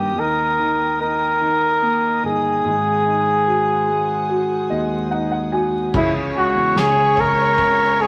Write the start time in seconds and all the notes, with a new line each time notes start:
Already playing: G2 D#3 A#3 G4 A#4 D#5 G5 D#6
0.18 D#2 D#4 A#4
0.60 D#3
1.01 D#4 A#4
1.41 D#3
1.82 A#3
2.23 G1 D#4 G#4
2.65 G#1 G#3 C5 F#5 G#5
3.06 D#4
3.47 F#4
3.88 G#3
4.29 F#4
4.70 D#2 G#3 D#5
5.11 D#4 F#5
5.32 F#5
5.52 F#4 G#5
5.94 C#2 C#3 B3 E4 C#5 E5 G#5 C#6, kick, floor tom, crash
6.35 G#3 F#4
6.56 E2
6.76 C#2 C#3 G#4, snare
7.17 G#3 A#4, kick, floor tom
7.58 C#3, kick
8.00 G#3 G#4